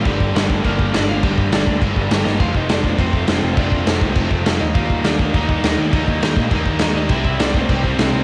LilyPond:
<<
  \new Staff \with { instrumentName = "Lead electric guitar" } { \time 4/4 \key f \mixolydian \tempo 4 = 204 <g' g''>4 <d' d''>4 <bes bes'>4 <d' d''>8 <f' f''>8 | <g' g''>4 <d' d''>4 r4. <ees' ees''>8 | <f' f''>8 <ees' ees''>8 <d' d''>4 <c' c''>2 | <d' d''>4 r2 r8 <ees' ees''>8 |
<f' f''>4 <d' d''>4 <ees' ees''>2 | <ees' ees''>4 r2 r8 <ees' ees''>8 | <e' e''>8 <e' e''>8 <d' d''>8 <c' c''>2~ <c' c''>8 | }
  \new Staff \with { instrumentName = "Distorted electric guitar" } { \clef bass \time 4/4 \key f \mixolydian <g, d g bes d'>2~ <g, d g bes d'>8 <g, d g bes d'>8 <g, d g bes d'>4 | <g, d g bes d'>2~ <g, d g bes d'>8 <g, d g bes d'>8 <g, d g bes d'>4 | <f, c f a c'>2~ <f, c f a c'>8 <f, c f a c'>8 <f, c f a c'>4 | <f, c f a c'>2~ <f, c f a c'>8 <f, c f a c'>8 <f, c f a c'>8 <ees g bes ees'>8~ |
<ees g bes ees'>2 <ees g bes ees'>8 <ees g bes ees'>4 <ees g bes ees'>8~ | <ees g bes ees'>2 <ees g bes ees'>8 <ees g bes ees'>4 r8 | <c g c' e'>2~ <c g c' e'>8 <c g c' e'>8 <c g c' e'>4 | }
  \new Staff \with { instrumentName = "Distorted electric guitar" } { \clef bass \time 4/4 \key f \mixolydian <g, d g>4 <g, d g>4 <g, d g>4 <g, d g>4 | <g, d g>4 <g, d g>4 <g, d g>4 <g, d g>4 | <f, c f>4 <f, c f>4 <f, c f>4 <f, c f>4 | <f, c f>4 <f, c f>4 <f, c f>4 <f, c f>8 r8 |
<ees bes ees'>4 <ees bes ees'>4 <ees bes ees'>4 <ees bes ees'>4 | <ees bes ees'>4 <ees bes ees'>4 <ees bes ees'>4 <ees bes ees'>4 | <c g c'>4 <c g c'>4 <c g c'>4 <c g c'>4 | }
  \new Staff \with { instrumentName = "Overdriven electric guitar" } { \clef bass \time 4/4 \key f \mixolydian <g, d g>4 <g, d g>4 <g, d g>4 <g, d g>4 | <g, d g>4 <g, d g>4 <g, d g>4 <g, d g>4 | r1 | r1 |
r1 | r1 | <c g c'>4 <c g c'>4 <c g c'>4 <c g c'>4 | }
  \new Staff \with { instrumentName = "Picked electric bass" } { \clef bass \time 4/4 \key f \mixolydian g,,8 g,,8 g,,4 g,,4 g,,8 g,,8 | g,,8 g,,8 g,,8 d,8 g,,8 g,,8 g,,8 g,,8 | f,,8 f,,8 f,,4 f,,4 f,,8 f,,8 | f,,8 f,,8 f,,8 c,8 f,,8 f,,8 f,,8 ees,8 |
ees,8 ees,8 ees,4 ees,4 ees,8 ees,8 | ees,8 ees,8 ees,8 bes,8 ees,8 ees,8 ees,8 ees,8 | c,8 c,8 c,4 c,4 c,8 c,8 | }
  \new DrumStaff \with { instrumentName = "Drums" } \drummode { \time 4/4 <cymc bd>8 bd8 <cymc sn>8 bd8 <cymc bd>8 bd8 <cymc sn>4 | <cymc bd>8 bd8 <cymc sn>8 bd8 <cymc bd>8 bd8 <cymc sn>8 sn8 | <cymc bd>8 bd8 <cymc sn>8 bd8 <cymc bd>8 bd8 <cymc sn>4 | <cymc bd>8 bd8 <cymc sn>8 bd8 <cymc bd>8 bd8 <cymc sn>4 |
<cymc bd>8 bd8 <cymc sn>8 bd8 <cymc bd>8 bd8 <cymc sn>4 | <cymc bd>8 bd8 <cymc sn>8 bd8 <cymc bd>8 bd8 <cymc sn>4 | <cymc bd>8 bd8 <cymc sn>8 bd8 <cymc bd>8 bd8 <cymc sn>4 | }
>>